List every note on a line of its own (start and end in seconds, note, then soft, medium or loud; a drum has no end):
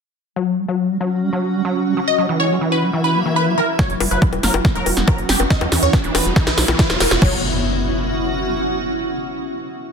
0.36 0.59 F#3 medium
0.36 2.76 C#4 medium
0.36 2.76 F#4 medium
0.58 0.66 G3 medium
0.63 2.76 F#5 medium
0.68 0.91 F#3 medium
0.90 0.98 G3 medium
1.00 1.23 F#3 medium
1.00 2.76 C#6 loud
1.22 1.30 G3 medium
1.33 1.56 F#3 medium
1.54 1.62 G3 medium
1.65 1.88 F#3 medium
1.86 1.94 G3 medium
1.97 2.00 F#3 medium
2.08 2.22 D#5 loud
2.13 4.48 E5 medium
2.18 2.26 F#3 medium
2.26 2.52 E3 medium
2.26 4.34 E4 medium
2.36 2.47 G#3 medium
2.36 2.54 C#5 medium
2.36 4.48 B5 medium
2.50 2.59 F#3 medium
2.50 2.57 G#3 medium
2.61 2.84 E3 medium
2.72 2.87 B4 medium
2.83 2.91 F#3 medium
2.93 3.16 E3 medium
3.04 3.19 B4 loud
3.15 3.23 F#3 medium
3.15 3.58 A#3 medium
3.25 3.48 E3 medium
3.36 3.46 B4 medium
3.47 3.55 F#3 medium
3.58 3.61 E3 medium
3.58 3.67 A#4 medium
3.79 4.02 F#3 medium
3.79 6.19 C#4 medium
3.79 3.94 C#5 loud
3.79 kick loud
3.79 snare soft
3.79 closed hi-hat medium
3.79 riser medium
3.79 high bongo soft
3.89 3.96 F#1 medium
3.89 6.19 F#4 medium
3.89 6.19 F#5 medium
3.89 6.19 C#6 medium
3.89 closed hi-hat soft
4.00 4.07 F#1 loud
4.00 4.09 G3 medium
4.00 open hi-hat loud
4.00 high bongo medium
4.11 4.17 F#1 medium
4.11 4.34 F#3 medium
4.11 4.26 B4 loud
4.11 closed hi-hat medium
4.22 kick loud
4.22 closed hi-hat medium
4.33 4.39 E1 medium
4.33 4.41 G3 medium
4.33 closed hi-hat soft
4.33 high bongo soft
4.43 4.50 F#1 loud
4.43 4.66 F#3 medium
4.43 4.58 A#4 medium
4.43 snare medium
4.43 open hi-hat loud
4.54 4.60 F#1 medium
4.54 closed hi-hat medium
4.54 high bongo medium
4.65 4.73 G3 medium
4.65 kick loud
4.65 snare medium
4.65 closed hi-hat medium
4.75 4.82 E1 medium
4.75 4.98 F#3 medium
4.75 4.90 A#4 loud
4.75 closed hi-hat soft
4.86 4.92 E1 loud
4.86 open hi-hat loud
4.86 high bongo soft
4.97 5.03 E1 medium
4.97 5.05 G3 medium
4.97 snare medium
4.97 closed hi-hat medium
5.08 5.31 F#3 medium
5.08 5.17 A#4 medium
5.08 kick loud
5.08 closed hi-hat medium
5.08 high bongo medium
5.18 5.25 F#1 medium
5.18 closed hi-hat soft
5.29 5.35 F#1 loud
5.29 5.37 G3 medium
5.29 5.39 G4 medium
5.29 snare medium
5.29 open hi-hat loud
5.40 5.46 F#1 medium
5.40 5.43 F#3 medium
5.40 closed hi-hat medium
5.40 high bongo soft
5.50 7.22 B3 medium
5.50 5.65 D#5 loud
5.50 kick loud
5.50 snare medium
5.50 closed hi-hat medium
5.56 7.22 E4 medium
5.61 5.67 E2 medium
5.61 5.69 F#3 medium
5.61 closed hi-hat soft
5.61 high bongo medium
5.72 5.78 E2 loud
5.72 5.95 E3 medium
5.72 snare medium
5.72 open hi-hat loud
5.83 5.89 E2 loud
5.83 5.97 C#5 loud
5.83 closed hi-hat medium
5.93 6.01 F#3 medium
5.93 kick loud
5.93 snare medium
5.93 closed hi-hat medium
5.93 high bongo soft
6.04 6.10 E1 medium
6.04 6.27 E3 medium
6.04 closed hi-hat soft
6.15 6.21 E1 loud
6.15 6.30 B4 loud
6.15 snare medium
6.15 open hi-hat loud
6.15 high bongo medium
6.25 6.32 E1 medium
6.25 6.34 F#3 medium
6.25 closed hi-hat medium
6.36 6.59 E3 medium
6.36 kick loud
6.36 snare medium
6.36 closed hi-hat medium
6.47 6.53 B1 medium
6.47 6.62 B4 medium
6.47 snare medium
6.47 closed hi-hat soft
6.47 high bongo soft
6.58 6.64 B1 loud
6.58 6.66 F#3 medium
6.58 snare loud
6.58 open hi-hat loud
6.68 6.75 B1 medium
6.68 6.91 E3 medium
6.68 snare medium
6.68 closed hi-hat medium
6.68 high bongo medium
6.79 6.89 B4 medium
6.79 kick loud
6.79 snare loud
6.79 closed hi-hat medium
6.90 6.96 E1 medium
6.90 6.98 F#3 medium
6.90 snare medium
6.90 closed hi-hat soft
7.00 7.07 E1 loud
7.00 7.04 E3 medium
7.00 7.10 A#4 medium
7.00 snare loud
7.00 open hi-hat loud
7.00 high bongo soft
7.11 7.17 E1 medium
7.11 snare loud
7.11 closed hi-hat medium
7.22 7.42 F#1 loud
7.22 7.42 F#3 loud
7.22 8.89 C#4 medium
7.22 7.38 C#5 loud
7.22 kick loud
7.22 crash medium
7.22 impact medium
7.28 8.89 F#4 medium